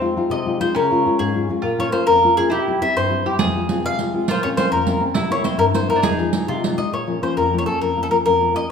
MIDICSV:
0, 0, Header, 1, 5, 480
1, 0, Start_track
1, 0, Key_signature, -4, "minor"
1, 0, Tempo, 294118
1, 1224, Time_signature, 6, 3, 24, 8
1, 14221, End_track
2, 0, Start_track
2, 0, Title_t, "Mandolin"
2, 0, Program_c, 0, 25
2, 509, Note_on_c, 0, 75, 79
2, 986, Note_off_c, 0, 75, 0
2, 993, Note_on_c, 0, 72, 83
2, 1209, Note_off_c, 0, 72, 0
2, 1238, Note_on_c, 0, 70, 62
2, 1898, Note_off_c, 0, 70, 0
2, 1945, Note_on_c, 0, 68, 74
2, 2445, Note_off_c, 0, 68, 0
2, 2933, Note_on_c, 0, 73, 85
2, 3133, Note_off_c, 0, 73, 0
2, 3139, Note_on_c, 0, 72, 82
2, 3352, Note_off_c, 0, 72, 0
2, 3373, Note_on_c, 0, 70, 93
2, 3819, Note_off_c, 0, 70, 0
2, 3870, Note_on_c, 0, 68, 87
2, 4077, Note_off_c, 0, 68, 0
2, 4105, Note_on_c, 0, 67, 67
2, 4548, Note_off_c, 0, 67, 0
2, 4601, Note_on_c, 0, 76, 88
2, 4806, Note_off_c, 0, 76, 0
2, 4841, Note_on_c, 0, 72, 88
2, 5337, Note_off_c, 0, 72, 0
2, 6294, Note_on_c, 0, 77, 99
2, 6947, Note_off_c, 0, 77, 0
2, 7029, Note_on_c, 0, 72, 75
2, 7224, Note_off_c, 0, 72, 0
2, 7230, Note_on_c, 0, 73, 86
2, 7312, Note_off_c, 0, 73, 0
2, 7463, Note_on_c, 0, 72, 88
2, 7693, Note_off_c, 0, 72, 0
2, 7699, Note_on_c, 0, 70, 86
2, 8198, Note_off_c, 0, 70, 0
2, 8677, Note_on_c, 0, 73, 91
2, 8884, Note_off_c, 0, 73, 0
2, 8893, Note_on_c, 0, 72, 72
2, 9107, Note_off_c, 0, 72, 0
2, 9120, Note_on_c, 0, 70, 84
2, 9202, Note_off_c, 0, 70, 0
2, 9383, Note_on_c, 0, 72, 80
2, 9596, Note_off_c, 0, 72, 0
2, 9624, Note_on_c, 0, 70, 80
2, 9835, Note_off_c, 0, 70, 0
2, 9846, Note_on_c, 0, 68, 80
2, 10522, Note_off_c, 0, 68, 0
2, 10582, Note_on_c, 0, 65, 68
2, 11063, Note_on_c, 0, 75, 73
2, 11090, Note_off_c, 0, 65, 0
2, 11283, Note_off_c, 0, 75, 0
2, 11318, Note_on_c, 0, 73, 60
2, 11766, Note_off_c, 0, 73, 0
2, 11799, Note_on_c, 0, 72, 66
2, 12013, Note_off_c, 0, 72, 0
2, 12028, Note_on_c, 0, 70, 70
2, 12370, Note_off_c, 0, 70, 0
2, 12378, Note_on_c, 0, 73, 73
2, 12496, Note_off_c, 0, 73, 0
2, 12502, Note_on_c, 0, 69, 72
2, 12747, Note_off_c, 0, 69, 0
2, 12753, Note_on_c, 0, 70, 65
2, 13093, Note_off_c, 0, 70, 0
2, 13102, Note_on_c, 0, 69, 77
2, 13158, Note_off_c, 0, 69, 0
2, 13235, Note_on_c, 0, 70, 73
2, 13317, Note_off_c, 0, 70, 0
2, 13474, Note_on_c, 0, 70, 84
2, 13917, Note_off_c, 0, 70, 0
2, 13967, Note_on_c, 0, 75, 85
2, 14172, Note_off_c, 0, 75, 0
2, 14221, End_track
3, 0, Start_track
3, 0, Title_t, "Mandolin"
3, 0, Program_c, 1, 25
3, 0, Note_on_c, 1, 60, 80
3, 1211, Note_off_c, 1, 60, 0
3, 1218, Note_on_c, 1, 61, 81
3, 2585, Note_off_c, 1, 61, 0
3, 2643, Note_on_c, 1, 65, 77
3, 4070, Note_off_c, 1, 65, 0
3, 4077, Note_on_c, 1, 64, 71
3, 5315, Note_off_c, 1, 64, 0
3, 5321, Note_on_c, 1, 67, 69
3, 5525, Note_off_c, 1, 67, 0
3, 5532, Note_on_c, 1, 68, 95
3, 6990, Note_off_c, 1, 68, 0
3, 6996, Note_on_c, 1, 65, 81
3, 8388, Note_off_c, 1, 65, 0
3, 8395, Note_on_c, 1, 64, 81
3, 9718, Note_off_c, 1, 64, 0
3, 9724, Note_on_c, 1, 62, 59
3, 9827, Note_off_c, 1, 62, 0
3, 9833, Note_on_c, 1, 63, 76
3, 10994, Note_off_c, 1, 63, 0
3, 14221, End_track
4, 0, Start_track
4, 0, Title_t, "Nylon-string guitar"
4, 0, Program_c, 2, 24
4, 0, Note_on_c, 2, 41, 50
4, 19, Note_on_c, 2, 56, 37
4, 23, Note_on_c, 2, 63, 44
4, 29, Note_on_c, 2, 65, 49
4, 248, Note_off_c, 2, 56, 0
4, 251, Note_off_c, 2, 63, 0
4, 260, Note_off_c, 2, 41, 0
4, 262, Note_off_c, 2, 65, 0
4, 265, Note_on_c, 2, 56, 43
4, 273, Note_on_c, 2, 63, 44
4, 282, Note_on_c, 2, 65, 51
4, 486, Note_on_c, 2, 48, 68
4, 659, Note_off_c, 2, 56, 0
4, 660, Note_off_c, 2, 63, 0
4, 667, Note_off_c, 2, 65, 0
4, 747, Note_on_c, 2, 56, 42
4, 756, Note_on_c, 2, 63, 36
4, 764, Note_on_c, 2, 65, 38
4, 962, Note_off_c, 2, 56, 0
4, 967, Note_off_c, 2, 48, 0
4, 968, Note_off_c, 2, 63, 0
4, 970, Note_off_c, 2, 65, 0
4, 981, Note_on_c, 2, 56, 49
4, 989, Note_on_c, 2, 63, 41
4, 990, Note_on_c, 2, 65, 51
4, 1172, Note_off_c, 2, 56, 0
4, 1176, Note_off_c, 2, 63, 0
4, 1177, Note_off_c, 2, 65, 0
4, 1235, Note_on_c, 2, 49, 52
4, 1482, Note_on_c, 2, 56, 43
4, 1490, Note_on_c, 2, 61, 40
4, 1494, Note_on_c, 2, 65, 51
4, 1700, Note_off_c, 2, 49, 0
4, 1706, Note_off_c, 2, 56, 0
4, 1718, Note_off_c, 2, 65, 0
4, 1721, Note_off_c, 2, 61, 0
4, 1726, Note_on_c, 2, 56, 43
4, 1740, Note_on_c, 2, 61, 45
4, 1740, Note_on_c, 2, 65, 47
4, 1955, Note_on_c, 2, 44, 72
4, 2104, Note_off_c, 2, 56, 0
4, 2111, Note_off_c, 2, 65, 0
4, 2114, Note_off_c, 2, 61, 0
4, 2207, Note_on_c, 2, 56, 36
4, 2221, Note_on_c, 2, 61, 34
4, 2224, Note_on_c, 2, 65, 43
4, 2415, Note_off_c, 2, 44, 0
4, 2420, Note_off_c, 2, 56, 0
4, 2427, Note_off_c, 2, 61, 0
4, 2434, Note_off_c, 2, 65, 0
4, 2440, Note_on_c, 2, 56, 52
4, 2446, Note_on_c, 2, 61, 39
4, 2457, Note_on_c, 2, 65, 54
4, 2618, Note_off_c, 2, 56, 0
4, 2622, Note_off_c, 2, 61, 0
4, 2626, Note_off_c, 2, 65, 0
4, 2659, Note_on_c, 2, 46, 65
4, 2915, Note_on_c, 2, 58, 56
4, 2922, Note_on_c, 2, 61, 41
4, 2934, Note_on_c, 2, 65, 53
4, 3123, Note_off_c, 2, 46, 0
4, 3128, Note_off_c, 2, 58, 0
4, 3137, Note_off_c, 2, 61, 0
4, 3140, Note_off_c, 2, 65, 0
4, 3148, Note_on_c, 2, 58, 52
4, 3156, Note_on_c, 2, 61, 45
4, 3162, Note_on_c, 2, 65, 52
4, 3400, Note_on_c, 2, 41, 66
4, 3528, Note_off_c, 2, 58, 0
4, 3533, Note_off_c, 2, 61, 0
4, 3535, Note_off_c, 2, 65, 0
4, 3650, Note_on_c, 2, 58, 37
4, 3659, Note_on_c, 2, 61, 35
4, 3668, Note_on_c, 2, 65, 45
4, 3852, Note_off_c, 2, 41, 0
4, 3871, Note_off_c, 2, 58, 0
4, 3880, Note_off_c, 2, 61, 0
4, 3884, Note_off_c, 2, 65, 0
4, 3891, Note_on_c, 2, 58, 50
4, 3897, Note_on_c, 2, 61, 45
4, 3909, Note_on_c, 2, 65, 45
4, 4061, Note_off_c, 2, 58, 0
4, 4065, Note_off_c, 2, 61, 0
4, 4068, Note_off_c, 2, 65, 0
4, 4109, Note_on_c, 2, 48, 57
4, 4367, Note_on_c, 2, 55, 38
4, 4375, Note_on_c, 2, 60, 46
4, 4382, Note_on_c, 2, 64, 46
4, 4569, Note_off_c, 2, 48, 0
4, 4572, Note_off_c, 2, 60, 0
4, 4575, Note_off_c, 2, 55, 0
4, 4578, Note_off_c, 2, 64, 0
4, 4594, Note_on_c, 2, 55, 44
4, 4594, Note_on_c, 2, 60, 38
4, 4598, Note_on_c, 2, 64, 46
4, 4836, Note_on_c, 2, 43, 65
4, 4976, Note_off_c, 2, 60, 0
4, 4979, Note_off_c, 2, 55, 0
4, 4980, Note_off_c, 2, 64, 0
4, 5065, Note_on_c, 2, 55, 34
4, 5074, Note_on_c, 2, 60, 32
4, 5082, Note_on_c, 2, 64, 39
4, 5297, Note_off_c, 2, 55, 0
4, 5299, Note_off_c, 2, 43, 0
4, 5301, Note_off_c, 2, 60, 0
4, 5303, Note_off_c, 2, 64, 0
4, 5314, Note_on_c, 2, 55, 38
4, 5322, Note_on_c, 2, 60, 43
4, 5328, Note_on_c, 2, 64, 43
4, 5498, Note_off_c, 2, 55, 0
4, 5500, Note_off_c, 2, 60, 0
4, 5501, Note_off_c, 2, 64, 0
4, 5554, Note_on_c, 2, 41, 55
4, 5799, Note_on_c, 2, 56, 39
4, 5808, Note_on_c, 2, 60, 38
4, 5814, Note_on_c, 2, 65, 46
4, 6009, Note_off_c, 2, 56, 0
4, 6017, Note_off_c, 2, 60, 0
4, 6019, Note_off_c, 2, 41, 0
4, 6028, Note_on_c, 2, 56, 46
4, 6030, Note_off_c, 2, 65, 0
4, 6036, Note_on_c, 2, 60, 42
4, 6049, Note_on_c, 2, 65, 50
4, 6271, Note_on_c, 2, 48, 66
4, 6417, Note_off_c, 2, 56, 0
4, 6422, Note_off_c, 2, 60, 0
4, 6430, Note_off_c, 2, 65, 0
4, 6508, Note_on_c, 2, 56, 37
4, 6515, Note_on_c, 2, 60, 30
4, 6525, Note_on_c, 2, 65, 34
4, 6736, Note_off_c, 2, 56, 0
4, 6737, Note_off_c, 2, 48, 0
4, 6737, Note_off_c, 2, 60, 0
4, 6743, Note_off_c, 2, 65, 0
4, 6753, Note_on_c, 2, 56, 48
4, 6760, Note_on_c, 2, 60, 39
4, 6763, Note_on_c, 2, 65, 42
4, 6938, Note_off_c, 2, 56, 0
4, 6938, Note_off_c, 2, 60, 0
4, 6942, Note_off_c, 2, 65, 0
4, 7002, Note_on_c, 2, 46, 52
4, 7240, Note_on_c, 2, 58, 50
4, 7254, Note_on_c, 2, 60, 44
4, 7257, Note_on_c, 2, 61, 52
4, 7444, Note_off_c, 2, 58, 0
4, 7449, Note_off_c, 2, 60, 0
4, 7458, Note_off_c, 2, 46, 0
4, 7462, Note_on_c, 2, 58, 47
4, 7465, Note_off_c, 2, 61, 0
4, 7472, Note_on_c, 2, 60, 41
4, 7485, Note_on_c, 2, 61, 52
4, 7704, Note_on_c, 2, 41, 65
4, 7847, Note_off_c, 2, 58, 0
4, 7851, Note_off_c, 2, 60, 0
4, 7860, Note_off_c, 2, 61, 0
4, 7941, Note_on_c, 2, 58, 40
4, 7953, Note_on_c, 2, 60, 35
4, 7960, Note_on_c, 2, 61, 42
4, 8146, Note_off_c, 2, 58, 0
4, 8155, Note_off_c, 2, 60, 0
4, 8161, Note_off_c, 2, 61, 0
4, 8165, Note_off_c, 2, 41, 0
4, 8166, Note_on_c, 2, 58, 47
4, 8174, Note_on_c, 2, 60, 47
4, 8181, Note_on_c, 2, 61, 54
4, 8354, Note_off_c, 2, 58, 0
4, 8359, Note_off_c, 2, 60, 0
4, 8363, Note_off_c, 2, 61, 0
4, 8407, Note_on_c, 2, 48, 61
4, 8648, Note_on_c, 2, 58, 49
4, 8656, Note_on_c, 2, 60, 44
4, 8663, Note_on_c, 2, 64, 53
4, 8852, Note_off_c, 2, 58, 0
4, 8860, Note_off_c, 2, 60, 0
4, 8867, Note_off_c, 2, 64, 0
4, 8872, Note_on_c, 2, 58, 40
4, 8874, Note_off_c, 2, 48, 0
4, 8880, Note_on_c, 2, 60, 41
4, 8886, Note_on_c, 2, 64, 52
4, 9105, Note_on_c, 2, 43, 71
4, 9266, Note_off_c, 2, 58, 0
4, 9271, Note_off_c, 2, 60, 0
4, 9275, Note_off_c, 2, 64, 0
4, 9355, Note_on_c, 2, 58, 35
4, 9372, Note_on_c, 2, 60, 34
4, 9372, Note_on_c, 2, 64, 45
4, 9583, Note_off_c, 2, 58, 0
4, 9585, Note_off_c, 2, 43, 0
4, 9585, Note_off_c, 2, 60, 0
4, 9591, Note_off_c, 2, 64, 0
4, 9601, Note_on_c, 2, 58, 45
4, 9608, Note_on_c, 2, 60, 39
4, 9610, Note_on_c, 2, 64, 54
4, 9793, Note_off_c, 2, 58, 0
4, 9794, Note_off_c, 2, 60, 0
4, 9798, Note_off_c, 2, 64, 0
4, 9854, Note_on_c, 2, 41, 47
4, 10100, Note_on_c, 2, 56, 47
4, 10107, Note_on_c, 2, 53, 43
4, 10115, Note_on_c, 2, 63, 45
4, 10309, Note_off_c, 2, 56, 0
4, 10312, Note_off_c, 2, 63, 0
4, 10313, Note_off_c, 2, 53, 0
4, 10325, Note_off_c, 2, 41, 0
4, 10328, Note_on_c, 2, 53, 41
4, 10331, Note_on_c, 2, 56, 41
4, 10342, Note_on_c, 2, 63, 56
4, 10580, Note_on_c, 2, 48, 70
4, 10725, Note_off_c, 2, 56, 0
4, 10727, Note_off_c, 2, 53, 0
4, 10727, Note_off_c, 2, 63, 0
4, 10851, Note_on_c, 2, 53, 31
4, 10858, Note_on_c, 2, 56, 34
4, 10862, Note_on_c, 2, 63, 33
4, 11036, Note_off_c, 2, 53, 0
4, 11037, Note_off_c, 2, 56, 0
4, 11045, Note_off_c, 2, 63, 0
4, 11054, Note_off_c, 2, 48, 0
4, 11054, Note_on_c, 2, 53, 37
4, 11061, Note_on_c, 2, 56, 43
4, 11064, Note_on_c, 2, 63, 52
4, 11248, Note_off_c, 2, 53, 0
4, 11249, Note_off_c, 2, 56, 0
4, 11254, Note_off_c, 2, 63, 0
4, 11302, Note_on_c, 2, 46, 47
4, 11537, Note_on_c, 2, 53, 43
4, 11549, Note_on_c, 2, 58, 34
4, 11561, Note_on_c, 2, 61, 46
4, 11759, Note_off_c, 2, 53, 0
4, 11766, Note_off_c, 2, 58, 0
4, 11776, Note_off_c, 2, 46, 0
4, 11778, Note_on_c, 2, 53, 39
4, 11779, Note_off_c, 2, 61, 0
4, 11786, Note_on_c, 2, 58, 43
4, 11799, Note_on_c, 2, 61, 48
4, 12037, Note_on_c, 2, 41, 66
4, 12172, Note_off_c, 2, 53, 0
4, 12177, Note_off_c, 2, 58, 0
4, 12185, Note_off_c, 2, 61, 0
4, 12300, Note_on_c, 2, 53, 35
4, 12306, Note_on_c, 2, 58, 37
4, 12312, Note_on_c, 2, 61, 47
4, 12503, Note_off_c, 2, 41, 0
4, 12507, Note_off_c, 2, 53, 0
4, 12512, Note_off_c, 2, 58, 0
4, 12519, Note_off_c, 2, 61, 0
4, 12525, Note_on_c, 2, 53, 42
4, 12535, Note_on_c, 2, 58, 41
4, 12538, Note_on_c, 2, 61, 52
4, 12759, Note_on_c, 2, 41, 51
4, 12910, Note_off_c, 2, 53, 0
4, 12914, Note_off_c, 2, 58, 0
4, 12918, Note_off_c, 2, 61, 0
4, 13002, Note_on_c, 2, 53, 38
4, 13014, Note_on_c, 2, 61, 42
4, 13016, Note_on_c, 2, 58, 45
4, 13207, Note_off_c, 2, 53, 0
4, 13219, Note_off_c, 2, 58, 0
4, 13224, Note_off_c, 2, 41, 0
4, 13226, Note_on_c, 2, 53, 42
4, 13229, Note_off_c, 2, 61, 0
4, 13239, Note_on_c, 2, 58, 40
4, 13249, Note_on_c, 2, 61, 58
4, 13479, Note_on_c, 2, 41, 74
4, 13614, Note_off_c, 2, 53, 0
4, 13621, Note_off_c, 2, 58, 0
4, 13627, Note_off_c, 2, 61, 0
4, 13722, Note_on_c, 2, 53, 40
4, 13729, Note_on_c, 2, 58, 33
4, 13740, Note_on_c, 2, 61, 42
4, 13917, Note_off_c, 2, 53, 0
4, 13919, Note_off_c, 2, 58, 0
4, 13924, Note_off_c, 2, 61, 0
4, 13936, Note_on_c, 2, 53, 45
4, 13938, Note_off_c, 2, 41, 0
4, 13940, Note_on_c, 2, 58, 45
4, 13943, Note_on_c, 2, 61, 53
4, 14125, Note_off_c, 2, 53, 0
4, 14126, Note_off_c, 2, 58, 0
4, 14129, Note_off_c, 2, 61, 0
4, 14221, End_track
5, 0, Start_track
5, 0, Title_t, "Riq"
5, 5532, Note_on_c, 9, 54, 71
5, 5695, Note_off_c, 9, 54, 0
5, 6023, Note_on_c, 9, 54, 51
5, 6186, Note_off_c, 9, 54, 0
5, 6506, Note_on_c, 9, 54, 43
5, 6669, Note_off_c, 9, 54, 0
5, 6985, Note_on_c, 9, 54, 58
5, 7148, Note_off_c, 9, 54, 0
5, 7472, Note_on_c, 9, 54, 54
5, 7635, Note_off_c, 9, 54, 0
5, 7941, Note_on_c, 9, 54, 51
5, 8105, Note_off_c, 9, 54, 0
5, 8403, Note_on_c, 9, 54, 64
5, 8567, Note_off_c, 9, 54, 0
5, 8881, Note_on_c, 9, 54, 49
5, 9044, Note_off_c, 9, 54, 0
5, 9375, Note_on_c, 9, 54, 45
5, 9538, Note_off_c, 9, 54, 0
5, 9845, Note_on_c, 9, 54, 65
5, 10008, Note_off_c, 9, 54, 0
5, 10100, Note_on_c, 9, 54, 16
5, 10263, Note_off_c, 9, 54, 0
5, 10328, Note_on_c, 9, 54, 55
5, 10492, Note_off_c, 9, 54, 0
5, 10838, Note_on_c, 9, 54, 55
5, 11001, Note_off_c, 9, 54, 0
5, 11072, Note_on_c, 9, 54, 18
5, 11236, Note_off_c, 9, 54, 0
5, 14221, End_track
0, 0, End_of_file